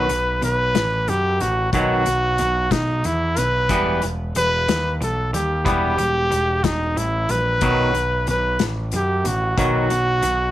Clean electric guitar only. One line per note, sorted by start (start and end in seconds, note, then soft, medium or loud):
0.10 0.39 D#3 medium
0.42 0.71 B2 medium
0.42 0.72 D#3 medium
0.75 1.04 B2 medium
0.75 1.04 D#3 medium
1.08 1.37 B2 medium
1.08 1.37 D#3 medium
1.41 1.70 B2 medium
1.41 1.70 D#3 medium
1.74 2.04 B2 medium
1.74 2.05 D#3 medium
1.74 2.05 F#3 medium
2.06 2.35 B2 medium
2.06 2.35 D#3 medium
2.39 2.68 B2 medium
2.39 2.68 D#3 medium
2.72 3.01 B2 medium
2.72 3.01 D#3 medium
3.05 3.34 B2 medium
3.05 3.34 D#3 medium
3.37 3.66 B2 medium
3.37 3.67 D#3 medium
3.70 4.00 E3 medium
3.70 4.01 G3 medium
3.70 4.01 B3 medium
4.03 4.32 E3 medium
4.36 4.65 E3 medium
4.36 4.65 G3 medium
4.68 4.97 E3 medium
4.68 4.97 G3 medium
5.01 5.30 E3 medium
5.01 5.30 G3 medium
5.33 5.62 E3 medium
5.33 5.63 G3 medium
5.65 5.96 E3 medium
5.65 5.96 G3 medium
5.65 5.96 B3 medium
5.98 6.28 E3 medium
5.98 6.28 G3 medium
6.31 6.60 E3 medium
6.31 6.60 G3 medium
6.64 6.93 E3 medium
6.64 6.93 G3 medium
6.96 7.26 E3 medium
6.96 7.26 G3 medium
7.30 7.59 E3 medium
7.30 7.59 G3 medium
7.62 7.92 B2 medium
7.62 7.93 D#3 medium
7.62 7.93 F#3 loud
7.94 8.23 B2 medium
7.94 8.23 D#3 medium
8.28 8.57 B2 medium
8.28 8.57 D#3 medium
8.61 8.90 B2 medium
8.61 8.90 D#3 medium
8.93 9.22 B2 medium
8.93 9.22 D#3 medium
9.25 9.54 B2 medium
9.25 9.55 D#3 medium
9.57 9.88 B2 medium
9.57 9.88 D#3 medium
9.57 9.89 F#3 medium
9.91 10.20 B2 medium
9.91 10.20 D#3 medium
10.23 10.51 B2 medium
10.23 10.51 D#3 medium